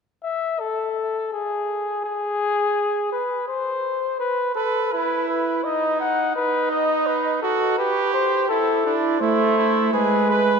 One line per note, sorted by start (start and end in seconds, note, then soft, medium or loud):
0.24 0.61 E5 medium
0.60 1.32 A4 medium
1.33 2.03 G#4 medium
2.05 3.10 G#4 medium
3.12 3.48 B4 medium
3.48 4.19 C5 medium
4.20 4.55 B4 medium
4.55 4.91 A4 medium
4.55 4.94 B4 medium
4.92 5.64 E4 medium
4.92 5.28 B4 medium
5.28 5.66 B4 medium
5.64 6.34 D#4 medium
5.64 6.00 D#5 medium
6.00 6.35 F#5 medium
6.36 7.41 D#4 medium
6.36 6.71 B4 medium
6.71 7.08 D#5 medium
7.07 7.42 B4 medium
7.42 7.78 F#4 medium
7.42 7.80 A4 medium
7.78 8.49 G4 medium
7.78 8.13 B4 medium
8.14 8.48 C5 medium
8.49 8.85 E4 medium
8.49 8.95 A4 medium
8.85 9.21 D4 medium
8.85 9.19 E4 medium
9.21 9.92 A3 loud
9.21 9.57 E4 medium
9.21 9.89 C5 medium
9.58 9.93 E4 medium
9.93 10.60 G#3 medium
9.93 10.29 G#4 medium
9.93 10.60 B4 medium
10.30 10.60 B4 medium